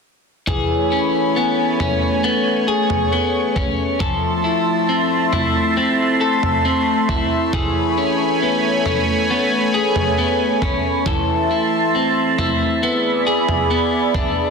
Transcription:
0.47 E3 A3 G#4 C#5 G#5 B5, kick, floor tom
0.92 C#4
1.36 B3
1.80 C#4, floor tom
2.24 B3 C#6
2.68 G#4
2.90 floor tom
3.12 B3
3.56 C#4, kick, floor tom
4.00 F3 A3 A4 E5 A5 C6, kick, floor tom
4.44 E4
4.89 C4
5.33 E4, floor tom
5.77 C4
6.21 A4
6.43 floor tom
6.65 C4
7.09 E4, kick, floor tom
7.53 E3 G#4 C#5 G#5 B5, kick, floor tom
7.98 C#4
8.42 B3
8.86 C#4, floor tom
9.30 B3
9.74 G#4
9.96 floor tom
10.18 B3
10.62 C#4, kick, floor tom
11.06 E3 A4 E5 A5 C6, kick, floor tom
11.51 E4
11.95 C4
12.38 E4, floor tom
12.83 B3 G#4 D5 B5
13.27 G#4
13.49 floor tom
13.70 B3
14.14 D4, kick, floor tom

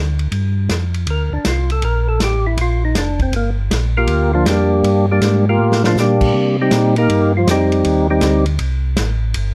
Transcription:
Already playing: D2
0.19 ride
0.32 G2, ride
0.69 F2, snare, hi-hat pedal, ride
0.94 ride
1.07 D2 A#4, ride
1.32 D2 D4
1.45 C2 F4, snare, hi-hat pedal, ride
1.70 A4, ride
1.82 A#1 A#4, ride
2.09 A4
2.20 A1, snare, hi-hat pedal, ride
2.24 G4
2.47 E4
2.57 A#1, ride
2.61 F4
2.85 D#4
2.95 F1 D4, snare, hi-hat pedal, ride
3.19 C4, kick, ride
3.32 G1 A#3, ride
3.70 A#1, snare, hi-hat pedal, ride
3.97 A#3 F4 G4 A#4
4.07 D2, ride
4.33 F3 A#3 D4 F4
4.46 F2 G3 A#3 D4 G4, snare, hi-hat pedal, ride
4.83 G2, ride
5.11 G3 A#3 D4 G4
5.21 G#2, snare, hi-hat pedal, ride
5.49 A#3 F4 G4 A#4
5.59 A2
5.72 snare
5.84 F3 A#3 D4 F4, snare
5.96 A#2 G4, snare, hi-hat pedal
6.00 G3 A#3 D4
6.21 kick, crash
6.34 C3
6.61 G3 C4 D#4 G4
6.71 A#2, snare, hi-hat pedal, ride
6.96 A#3 D#4 G4 A#4, ride
7.09 G2, ride
7.37 F3 F4
7.47 F2 C4 D#4 G4, snare, hi-hat pedal, ride
7.51 G3
7.72 ride
7.84 D#2, ride
8.10 G3 C4 D#4 G4
8.21 D2, snare, hi-hat pedal, ride
8.46 ride
8.59 C2, ride
8.97 A1, snare, hi-hat pedal, ride
9.34 G1, ride

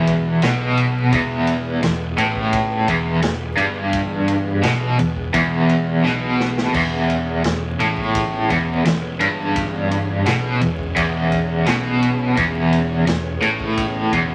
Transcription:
Already playing: E1 E2 E3 B3 G#4 B4
0.07 kick, ride
0.42 B1 B2, snare, ride
0.77 ride
1.12 E1 E2, kick, ride
1.47 ride
1.83 E1 E2, snare, ride
2.18 A1 A2, ride
2.35 kick
2.53 kick, ride
2.88 E1 E2, kick, ride
3.22 E1 E2, snare, ride
3.57 G1 G2, ride
3.93 kick, ride
4.28 ride
4.63 B1 B2, snare, ride
4.98 E1 E2, ride
5.16 kick
5.34 E1 E2, kick, ride
5.69 ride
6.04 B1 B2, snare
6.40 snare
6.58 snare
6.74 E1 E2 C#5, kick, crash
7.10 ride
7.44 E1 E2, snare, ride
7.79 A1 A2, ride
7.97 kick
8.15 kick, ride
8.50 E1 E2, kick, ride
8.84 E1 E2, snare, ride
9.20 G1 G2, ride
9.56 kick, ride
9.91 ride
10.25 B1 B2, snare, ride
10.60 E1 E2, ride
10.79 kick
10.96 E1 E2, kick, ride
11.31 kick, ride
11.66 B1 B2, snare, ride
12.03 ride
12.37 E1 E2, kick, ride
12.73 ride
13.07 E1 E2, snare, ride
13.42 A1 A2, ride
13.60 kick
13.77 kick, ride
14.12 E1 E2, kick, ride

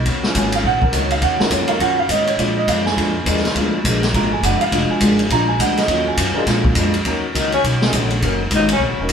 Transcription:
0.05 D#2 D#3 A#3 C#4 F#4, kick, ride
0.23 F#3 C#4 F4, snare
0.35 G#1 D#3 A#3 C#4 F#4 G#5, kick, hi-hat pedal, ride
0.52 F5, ride
0.64 A#1 D#3 A#3 C#4 F#4 F#5, kick
0.82 A#4, kick
0.92 C#2 D#3 F#3 A#3 C#4 D#4 A#4 C#5, kick, hi-hat pedal, ride
0.96 C#4 F#4
1.10 F5, ride
1.22 D#2 D#3 A#3 C#4 F#4 F#5, kick, ride
1.38 F#3 C#4 D#4 F4 A#4, muted upright bass stroke, snare
1.50 F2 D#3 A#3 C#4 F#4 C#5, kick, hi-hat pedal, ride
1.67 F#3 C#4 D#4 A#4 F5, ride
1.80 F#2 D#3 F#3 A#3 C#4 F4 F#4 F#5, kick, ride
1.99 F5
2.09 G#2 D#3 A#3 C#4 F#4 D#5, kick, hi-hat pedal, ride
2.27 C#5, ride
2.38 A#2 F3 G#3 D4 F4 D5, kick, ride
2.42 D4
2.57 D#5
2.67 F#2 A#2 F3 G#3 D4 F5, kick, hi-hat pedal, ride
2.86 G#5, snare
2.97 F2 A#2 F3 G#3 D4 F4, kick, ride
3.25 D#2 A#2 F3 G#3 D4 F4 A#4, kick, hi-hat pedal, ride
3.37 snare
3.45 snare, ride
3.55 D2 A#2 F3 G#3 D4 F4, kick, ride
3.84 A#1 A#2 F3 G#3 D4 F4 A#4, kick, hi-hat pedal, ride
4.03 snare, ride
4.14 G#1 A#2 F3 G#3 D4 F4 A#5, kick, ride
4.18 D4
4.33 G#5
4.42 F#1 A#2 F3 G#3 D4 F#5, kick, hi-hat pedal, ride
4.57 E5 F5, muted upright bass stroke, ride
4.71 F1 A#2 F3 G#3 D4 F4, kick, ride
4.90 G#5, muted upright bass stroke
5.00 G#1 A#2 F3 G#3 D4 F4 A#4, kick, hi-hat pedal, ride
5.19 ride
5.30 A#1 A#2 F3 G#3 D4 F4 A#5, kick, ride
5.48 G#5
5.58 D2 A#2 F3 G#3 D4 F#5, kick, hi-hat pedal, ride
5.77 D#5, snare, ride
5.88 D#2 D#3 F#3 A#3 C#4 F4 F#4, kick, ride
6.08 G#5
6.17 F#2 D#3 A#3 C#4 F#4, kick, hi-hat pedal, ride
6.35 G#3 D4 F4 A#4, muted upright bass stroke
6.46 A#2 F3 G#3 D4 F4, kick, snare, ride
6.64 kick
6.75 F2 A#2 F3 G#3 D4, kick, hi-hat pedal, ride
6.94 ride
7.05 D#2 D#3 F#3 A#3 C#4 D#4 F#4 A#4, kick, ride
7.33 C#2 D#3 F#3 A#3 C#4 D#4 A#4, kick, hi-hat pedal, ride
7.37 C#4 D#4 F#4
7.52 C#4, ride
7.64 B1 D#3 A#3 C#4 F#4, kick, ride
7.82 F#3 A#3 C#4 D#4 G#4, snare
7.93 A#1 D#3 A#3 C#4, kick, hi-hat pedal, ride
7.97 F#4
8.10 ride
8.22 F#1 D#3 F#3 A#3 C#4 D#4 A#4, kick, ride
8.26 C#4 F#4
8.51 G#1 D#3 A#3 C#4, kick, hi-hat pedal, ride
8.55 D#4 F#4
8.69 C#4, ride
8.80 A#1 D#3 A#3 C#4 F#4, kick
8.91 F#1
9.00 D#1 F#3 A#3 C#4 D#4 A#4
9.09 C#2, kick, hi-hat pedal, ride

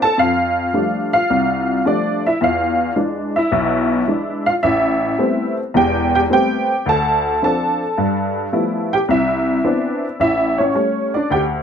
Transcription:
0.02 A4 A5
0.17 F2 F5
0.21 F4
0.73 F3 G3 A3 D4
1.13 F4 F5
1.30 C2
1.85 F3 G3 A3 D4 D5
2.26 E4 E5
2.41 E2 F4 F5
2.96 E3 G#3 D4
3.36 E4 E5
3.51 B1 B2
4.07 E3 G#3 D4
4.46 F4 F5
4.63 A1 E4 E5
5.19 G3 A3 B3 C4
5.74 E1 E2 G4 G5
6.15 G4 G5
6.30 G3 A3 B3 C4 G5
6.34 G4
6.86 D2 A4 A5
7.42 F3 C4 D4 A4 A5
7.98 G2
8.52 F3 G3 A3 B3 E4
8.93 G4 G5
9.08 C2 E4 E5
9.64 E3 B3 C4 D4
10.20 A1 E4 E5
10.58 C#4 C#5
10.75 G3 A3 C#4
11.14 D4 D5
11.30 D2 G4 G5

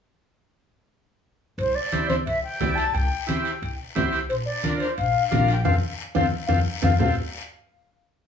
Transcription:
1.58 C2 C5, high timbale, long guiro
1.75 D5
1.92 E4 G4 C5, high conga, high timbale, short guiro
2.09 C5, high conga, high timbale, short guiro
2.26 C2 E5, high timbale, long guiro
2.43 G5
2.60 C2 E4 G4 D5, high conga, high timbale, low timbale, short guiro
2.75 A5, high timbale, short guiro
2.94 C2 G5, high timbale, long guiro
3.27 E4 G4 C5 G5, high conga, high timbale, short guiro
3.45 high timbale, short guiro
3.62 C2, high timbale, long guiro
3.95 C2 E4 G4 C5, high conga, high timbale, low timbale, short guiro
4.13 high timbale, short guiro
4.29 A#1 C5, high timbale, long guiro
4.46 D5
4.64 D4 F4 A#4, high conga, high timbale, short guiro
4.80 C5, high timbale, short guiro
4.97 A#1 F5, high timbale, long guiro
5.28 A#1 D4 F4 F5
5.32 A#4, high conga, high timbale, low timbale, short guiro
5.48 high timbale, short guiro
5.52 G5
5.64 F2 C4 F4 A4 F5, high conga, high timbale, long guiro
6.15 F2 C4 F4 A4 F5, high conga, high timbale, long guiro
6.47 F2 C4 F4 A4 F5, high conga, high timbale, long guiro
6.82 F2 C4 F4 A4 F5, high conga, high timbale, long guiro
6.99 F1 C4 F4 A4 F5, low conga, low timbale, long guiro

